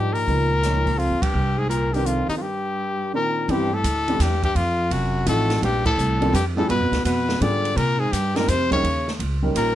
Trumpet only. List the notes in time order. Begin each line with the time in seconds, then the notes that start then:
Already playing: G4
0.13 A#4
0.98 F4
1.22 G4
1.58 G#4
1.70 A#4
1.94 G4
2.06 F4
2.29 D#4
2.38 F4 G4
3.15 A#4
3.51 G4
3.74 A4
4.22 G4
4.45 G4
4.56 F4
4.92 F#4
5.29 A4
5.64 G4
5.87 A4
6.35 G4
6.58 A4
6.70 B4
7.06 B4
7.42 D5
7.77 A#4
8.00 G#4
8.12 G4
8.36 A#4
8.49 C5
8.73 C#5
9.57 A#4